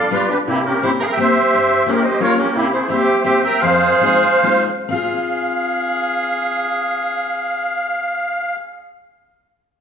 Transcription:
Already playing: accordion D5 F5
0.11 steel-string acoustic guitar G3 B3 D4 F4 G4, violin F4, accordion B4 D5
0.30 violin D4, accordion G4 B4
0.47 steel-string acoustic guitar C3, violin A#3, accordion E4 G4
0.65 violin C#4, accordion G4 A#4
0.82 steel-string acoustic guitar G3 A#3 C4 E4 G4, violin E4, accordion G4 C5
1.00 violin G#4 A#4, accordion E5 G5
1.06 violin A#4, accordion F5
1.12 accordion E5 G5
1.17 steel-string acoustic guitar G3 A#3 C4 E4 G4, violin G4, accordion C5 E5
1.54 steel-string acoustic guitar G2
1.86 steel-string acoustic guitar G3 A#3 C#4 F4 G4, violin C#4, accordion G4 A#4
1.91 violin C4, accordion G#4 A#4
1.96 violin C#4, accordion G4
2.03 violin G4, accordion C5 D#5
2.20 steel-string acoustic guitar G3 A#3 C#4 F4 G4, violin F4, accordion A#4 C#5
2.38 violin C#4, accordion G4 A#4
2.55 steel-string acoustic guitar C3, violin A#3, accordion E4 G4
2.73 violin E4, accordion G#4 C5
2.88 steel-string acoustic guitar G3 A#3 C4 E4 G4, violin G4, accordion C5 E5
3.24 steel-string acoustic guitar G3 A#3 C4 E4 G4, violin G4, accordion C5 E5
3.42 accordion E5 G5
3.47 violin A#4
3.60 steel-string acoustic guitar F2, accordion C5 F5
3.64 violin G#4
4.01 steel-string acoustic guitar G#3 C4 D#4 F4 G#4
4.43 steel-string acoustic guitar G#3 C4 D#4 F4 G#4
4.89 steel-string acoustic guitar C4 F4, violin G#4, accordion F5
4.94 steel-string acoustic guitar G#4

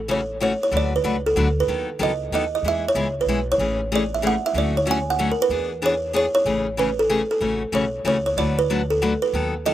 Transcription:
Already playing: upright bass A1, kalimba A4
0.08 steel-string acoustic guitar C#3 E3 A3 C#4 F#4, kalimba C#5
0.40 steel-string acoustic guitar C#3 E3 A3 C#4 F#4, kalimba C#5
0.63 kalimba C#5
0.71 upright bass D2, steel-string acoustic guitar D3 F#3 A3 D4 F#4 B4
0.77 kalimba D5
0.96 kalimba B4
1.03 upright bass C#2, steel-string acoustic guitar D3 F#3 A3 D4 F#4 B4
1.26 kalimba A4
1.35 upright bass D2, steel-string acoustic guitar D3 F#3 A3 D4 F#4 B4
1.60 kalimba B4
1.68 steel-string acoustic guitar D#3 F#3 B3 D#4 A4
1.99 upright bass C#2, steel-string acoustic guitar D#3 F#3 B3 D#4 A4, kalimba D#5
2.31 upright bass D#2, steel-string acoustic guitar D#3 F#3 B3 D#4 A4
2.35 kalimba D#5
2.55 kalimba D#5
2.62 upright bass E2, steel-string acoustic guitar E3 G#3 B3 E4 G#4
2.68 kalimba E5
2.88 kalimba C#5
2.95 upright bass C#2, steel-string acoustic guitar E3 G#3 B3 E4 G#4
3.21 kalimba B4
3.26 upright bass B1, steel-string acoustic guitar E3 G#3 B3 E4 G#4
3.52 kalimba C#5
3.58 upright bass A1, steel-string acoustic guitar C#3 E3 A3 C#4 G#4
3.92 steel-string acoustic guitar C#3 E3 A3 C#4 G#4, kalimba D5
4.14 kalimba E5
4.22 steel-string acoustic guitar C#3 E3 A3 C#4 G#4
4.27 kalimba F#5
4.46 kalimba E5
4.54 upright bass D2, steel-string acoustic guitar D3 F#3 A3 C#4 F#4
4.58 kalimba D5
4.77 kalimba C#5
4.86 steel-string acoustic guitar D3 F#3 A3 C#4 F#4
4.91 kalimba G#5
5.10 kalimba F#5
5.19 steel-string acoustic guitar D3 F#3 A3 C#4 F#4
5.32 kalimba A#4
5.42 kalimba B4
5.49 upright bass E2, steel-string acoustic guitar E3 B3 D4 G#4
5.82 steel-string acoustic guitar E3 B3 D4 G#4, kalimba C#5
6.13 steel-string acoustic guitar E3 B3 D4 G#4, kalimba C#5
6.35 kalimba C#5
6.45 upright bass A1, steel-string acoustic guitar C#3 E3 A3 C#4 G#4
6.77 steel-string acoustic guitar C#3 E3 A3 C#4 G#4, kalimba B4
6.99 kalimba A4
7.09 steel-string acoustic guitar C#3 E3 A3 C#4 G#4
7.31 kalimba A4
7.41 upright bass A1, steel-string acoustic guitar C#3 E3 A3 C#4 F#4
7.72 upright bass B1, steel-string acoustic guitar C#3 E3 A3 C#4 F#4, kalimba C#5
8.04 upright bass C#2, steel-string acoustic guitar C#3 E3 A3 C#4 F#4, kalimba C#5
8.26 kalimba C#5
8.36 upright bass D2, steel-string acoustic guitar D3 F#3 A3 D4 F#4 B4, kalimba D5
8.59 kalimba B4
8.70 steel-string acoustic guitar D3 F#3 A3 D4 F#4 B4
8.90 kalimba A4
9.02 steel-string acoustic guitar D3 F#3 A3 D4 F#4 B4
9.22 kalimba B4
9.33 upright bass D#2, steel-string acoustic guitar D#3 F#3 B3 D#4 A4
9.65 steel-string acoustic guitar D#3 F#3 B3 D#4 A4, kalimba D#5

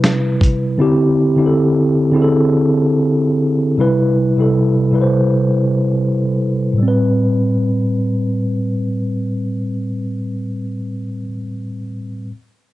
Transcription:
Already playing: tine electric piano C3 G3 E4 B4
0.04 snare, closed hi-hat
0.41 kick, closed hi-hat
0.78 tine electric piano D3 C4 E4 G4
1.36 tine electric piano D3 C4 E4 G4
1.46 tine electric piano A4
2.12 tine electric piano D3 C4 E4
2.16 tine electric piano G#4
2.22 tine electric piano A4
3.77 tine electric piano C3 G3 E4 B4
4.37 tine electric piano C3 G3 E4 A4
4.91 tine electric piano C3 G3 E4 B4
5.01 tine electric piano C5
6.73 tine electric piano A2
6.78 tine electric piano G3
6.83 tine electric piano C4
6.88 tine electric piano B4

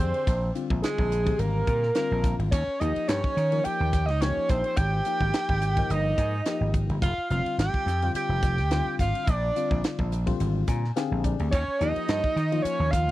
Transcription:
Already playing: tine electric piano D3 C4 G4 G#4
0.00 slap bass F2, tenor saxophone C4, analog synth lead C5
0.14 ride
0.27 slap bass A#1, kick, hi-hat pedal, ride
0.55 tine electric piano D3 G3 C4 F4, hi-hat pedal, ride
0.70 slap bass A#1, kick
0.82 tenor saxophone G#3, analog synth lead G#4, snare, hi-hat pedal, ride
0.98 slap bass A#1, kick
1.12 hi-hat pedal, ride
1.25 tine electric piano D3 G3 C4 G4, kick, ride
1.39 slap bass G#1, tenor saxophone A#3, analog synth lead A#4, hi-hat pedal, ride
1.67 slap bass A#2, kick, hi-hat pedal, ride
1.83 snare
1.95 tine electric piano D3 G3 C4 F4, tenor saxophone A#3, analog synth lead A#4, snare, hi-hat pedal, ride
2.11 slap bass A#1
2.24 kick, snare, hi-hat pedal, ride
2.39 slap bass G#1, ride
2.51 slap bass D#2, tenor saxophone C#4, analog synth lead C#5, kick, hi-hat pedal, ride
2.67 muted slap bass stroke
2.80 slap bass D#2, tine electric piano F3 A#3 D#4 G4, tenor saxophone D#4, analog synth lead D#5, hi-hat pedal, ride
2.96 muted slap bass stroke, ride
3.08 slap bass G2, tenor saxophone C#4, analog synth lead C#5, snare, hi-hat pedal, ride
3.24 muted slap bass stroke, kick
3.37 slap bass D#3, snare, hi-hat pedal, ride
3.52 tine electric piano F3 A#3 D#4 A#4, ride
3.64 tenor saxophone G4, analog synth lead G5, muted slap bass stroke, hi-hat pedal, ride
3.80 slap bass D#2
3.93 kick, snare, hi-hat pedal, ride
4.06 slap bass C#2, analog synth lead D#5, snare, ride
4.11 tenor saxophone D#4
4.21 tine electric piano F3 A#3 D#4 G4, tenor saxophone C#4, analog synth lead C#5, snare, hi-hat pedal, ride
4.37 muted slap bass stroke
4.49 slap bass A#1, tenor saxophone C4, analog synth lead C5, kick, snare, hi-hat pedal, ride
4.64 tenor saxophone C4, analog synth lead C5, ride
4.76 slap bass G#1, tenor saxophone G4, analog synth lead G5, kick, hi-hat pedal, ride
5.05 tine electric piano F3 A#3 D#4 G4, hi-hat pedal, ride
5.21 slap bass G#1, kick
5.34 snare, hi-hat pedal, ride
5.49 slap bass G#1, kick
5.62 hi-hat pedal, ride
5.77 tine electric piano F3 A#3 D#4 A#4, kick, ride
5.90 slap bass G1, tenor saxophone D#4, analog synth lead D#5, hi-hat pedal, ride
6.18 slap bass G#2, kick, hi-hat pedal, ride
6.46 tine electric piano F3 A#3 D#4 G4, snare, hi-hat pedal, ride
6.61 slap bass G#1
6.74 kick, hi-hat pedal, ride
6.89 slap bass G1, ride
7.02 slap bass F1, tenor saxophone F4, analog synth lead F5, kick, hi-hat pedal, ride
7.18 muted slap bass stroke
7.30 slap bass F1, tine electric piano D3 G3 C4 F4, tenor saxophone F4, analog synth lead F5, hi-hat pedal, ride
7.45 muted slap bass stroke, ride
7.58 slap bass G#1, tenor saxophone G4, analog synth lead G5, snare, hi-hat pedal, ride
7.74 muted slap bass stroke, kick
7.86 slap bass F2, snare, hi-hat pedal, ride
8.02 tine electric piano D3 G3 C4 F4, ride
8.14 tenor saxophone G4, analog synth lead G5, muted slap bass stroke, hi-hat pedal, ride
8.29 slap bass F1
8.43 kick, snare, hi-hat pedal, ride
8.58 slap bass D2, snare, ride
8.71 tine electric piano D3 G3 C4 F4, snare, hi-hat pedal, ride
8.86 muted slap bass stroke
8.99 slap bass G#1, tenor saxophone F4, analog synth lead F5, kick, snare, hi-hat pedal, ride
9.15 ride
9.27 slap bass A#1, tenor saxophone D4, analog synth lead D5, kick, hi-hat pedal, ride
9.55 tine electric piano D3 G3 C4 F4, hi-hat pedal, ride
9.71 slap bass A#1, kick
9.84 snare, hi-hat pedal, ride
9.99 slap bass A#1, kick
10.12 hi-hat pedal, ride
10.26 tine electric piano D3 G3 C4 F4, kick, ride
10.40 slap bass G#1, hi-hat pedal, ride
10.67 slap bass A#2, tine electric piano G#5, kick, snare, hi-hat pedal, ride
10.85 snare
10.96 tine electric piano D3 C4 G4 G#4 F5, snare, hi-hat pedal, ride
11.11 slap bass A#1
11.24 tine electric piano D5, kick, hi-hat pedal, ride
11.39 slap bass D2, ride
11.51 slap bass D#2, tenor saxophone C#4, analog synth lead C#5, kick, hi-hat pedal, ride
11.68 muted slap bass stroke
11.79 slap bass D#2, tine electric piano F3 A#3 D#4 G4, tenor saxophone D#4, analog synth lead D#5, hi-hat pedal, ride
11.96 muted slap bass stroke, ride
12.08 slap bass G2, snare, hi-hat pedal, ride
12.24 muted slap bass stroke, kick
12.36 slap bass D#3, snare, hi-hat pedal, ride
12.52 tine electric piano F3 A#3 D#4 F4, ride
12.62 tenor saxophone C#4, analog synth lead C#5, muted slap bass stroke, hi-hat pedal, ride
12.80 slap bass D#2
12.91 tenor saxophone F4, analog synth lead F5, kick, snare, hi-hat pedal, ride
13.08 slap bass C#2

